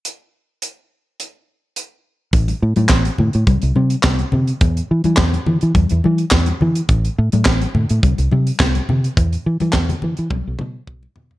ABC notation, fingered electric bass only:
X:1
M:4/4
L:1/16
Q:1/4=105
K:Clyd
V:1 name="Fingered electric bass" clef=bass
z16 | A,,,2 A,, A,, A,,,2 A,, A,, C,, C,, C,2 C,,2 C,2 | E,,2 E, E, E,,2 E, E, E,, E,, E,2 E,,2 E,2 | A,,,2 A,, A,, A,,,2 A,, A,, C,, C,, C,2 C,,2 C,2 |
E,,2 E, E, E,,2 E, E, B,,, B,,, B,,2 B,,,2 B,,2 |]